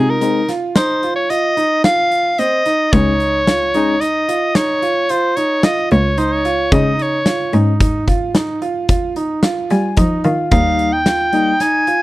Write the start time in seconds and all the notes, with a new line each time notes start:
Already playing: C3 G#3 C4 D#4 F4 G#4
0.10 A#4
0.21 G#3 C4 D#4, closed hi-hat
0.49 F4, snare, closed hi-hat
0.76 D#4 C5, snare, closed hi-hat
1.03 F4, closed hi-hat
1.16 C#5
1.30 F4 D#5, closed hi-hat
1.57 D#4, closed hi-hat
1.84 F4 F5, snare, closed hi-hat
2.12 closed hi-hat
2.38 C4 D#5, closed hi-hat
2.66 D#4, closed hi-hat
2.93 C#2 G#3 C#4 D#4 C#5, kick, closed hi-hat
3.20 closed hi-hat
3.47 F4, snare, closed hi-hat
3.74 G#3 C#4 D#4, closed hi-hat
4.01 D#4 D#5, closed hi-hat
4.29 F4, closed hi-hat
4.55 D#4 C#5, snare, closed hi-hat
4.82 F4, closed hi-hat
5.09 F4 C5, closed hi-hat
5.37 D#4 C#5, closed hi-hat
5.63 F4 D#5, snare, closed hi-hat
5.91 C#2 C#5, closed hi-hat
6.18 D#4 C5, closed hi-hat
6.32 C#5
6.45 F4, closed hi-hat
6.72 C#3 G#3 C#4 D#4 D#5, kick, closed hi-hat
6.99 C#5, closed hi-hat
7.26 F4, snare, closed hi-hat
7.53 G#2 G#3 C#4 D#4, closed hi-hat
7.80 D#4, kick, closed hi-hat
8.08 F4, kick, closed hi-hat
8.35 D#4, snare, closed hi-hat
8.62 F4, closed hi-hat
8.89 F4, kick, closed hi-hat
9.16 D#4, closed hi-hat
9.43 F4, snare, closed hi-hat
9.70 G3 G#5, snare, closed hi-hat
9.97 F3 D#4 D#5, kick, closed hi-hat
10.24 D#3 F4 F5, closed hi-hat
10.51 D#2 G3 A#3 D#4 F5, kick, closed hi-hat
10.79 closed hi-hat
10.93 G5
11.06 F4, snare, closed hi-hat
11.33 G3 A#3 D#4, closed hi-hat
11.60 D#4 G#5, snare, closed hi-hat
11.87 F4, closed hi-hat